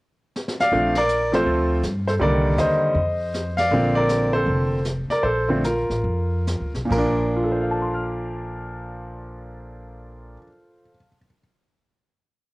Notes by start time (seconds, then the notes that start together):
0.36 snare
0.48 snare
0.60 D5 F5, snare
0.72 A#1 F3 A3 C4 D4, brush sweep
0.95 A#4 D5, snare, ride
1.09 hi-hat pedal
1.32 F3 A3 C4 F4 C5, snare
1.36 A4
1.46 D2, brush sweep
1.83 G2, snare, hi-hat pedal
2.08 A4 C5, snare
2.19 C2 D3 D#3 G3 A#3 A#4 D5, brush sweep
2.57 D#2 C5 D#5, snare, hi-hat pedal
2.95 F2, brush sweep
3.34 snare, hi-hat pedal
3.57 D5 F5, snare, ride
3.71 A#1 D3 F3 A#3 C4, brush sweep
3.95 A#4 D5
4.09 snare, hi-hat pedal
4.33 A4 C5
4.46 F1, brush sweep
4.85 snare, hi-hat pedal
5.08 A#4 D5, muted upright bass stroke, snare
5.23 A#1 A4 C5, brush sweep
5.48 D3 F3 A3 C4
5.64 F4 A#4, snare, hi-hat pedal
5.90 A1, snare
6.04 F2, brush sweep
6.47 snare, hi-hat pedal
6.60 D2
6.74 B1, snare
6.85 A#2
6.89 A#1 F3 A#3 A#4, kick, crash
6.97 D4
7.37 F4
7.44 A4
7.52 C5
7.61 F5
7.71 A5
7.82 C6
7.94 F6